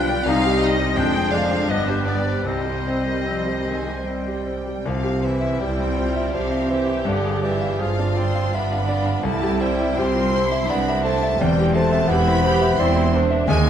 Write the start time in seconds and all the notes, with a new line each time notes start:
Already playing: B1 B2 G3 F4 G4 B4 D5 D#5 F5 G5
0.09 D5
0.25 C2 C3 G3 D#4 G4 C5 D#5 F5
0.44 G4
0.61 G3 D#4 D#5
0.78 D5
0.96 F1 F2 D3 G#3 D4 G#4 C5 D5 G5
1.14 G#4
1.31 G#3 D4 D5 F5
1.50 C5
1.67 G1 G2 G3 B3 G4 B4 D#5
1.87 G4 C5
2.06 G3 B3 D5
2.25 C5
2.44 C2 C3 G3 C4 C5 D#5
2.65 G4
2.87 G3 C4 C5
3.05 A#4
3.25 F3 G3 C4 C5
3.45 G4
3.65 D#3 G#3 C4 G#5
3.85 G4
4.04 G3 C4 G5
4.26 G4
4.45 C4 C5
4.66 G4
4.86 C2 C3 F3 F5
5.03 G4
5.23 E3 E4 C5 E5
5.41 E5
5.60 C2 C3 G3 E4 G4 G5
5.79 C4
5.96 E4 F4 C5
6.16 E5
6.33 C2 C3 F3 G4 D5 F5
6.51 E5
6.69 E3 E4 C5 E5
6.86 E5
7.05 G1 G2 D3 F4
7.09 D5
7.25 G#4
7.44 E3 F4 D5 E5
7.61 F5
7.79 G1 G2 F3 F4 G#4
7.83 F5
7.99 D4
8.16 C4 F4 D5 C6
8.35 F5
8.53 G1 G2 B3 D4 E5 B5
8.72 F5
8.88 F4 D5
9.06 F5
9.23 C2 A3 E4 A5
9.42 G4
9.60 G3 E4 C5 G5
9.81 E5
9.97 C2 C4 F4 G4 C6
10.16 C4
10.33 E4 C5
10.52 E5
10.69 C2 B3 D4 D5 B5
10.89 E5
11.04 A3 E4 C5 A5
11.23 E5
11.39 E1 E2 G3 C4 G5
11.59 G4
11.74 A3 C4 C5 A5
11.93 E5
12.08 E1 E2 B3 E4 G4 B5
12.27 C4
12.42 C4 G4 C5
12.61 E5
12.78 E1 E2 C4 E4 D5 C6
12.95 E5
13.12 C4 D4 C5
13.31 E5
13.48 D#2 G#3 C4 G#5